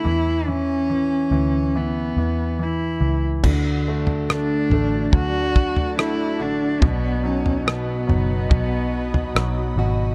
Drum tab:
CC |----------------|x---------------|----------------|
SD |----------------|----r-------r---|----r-------r---|
FT |----------------|o--o--o-o--o----|o--o--o-o--o----|
BD |----------------|o-------o-o-----|o-------o-------|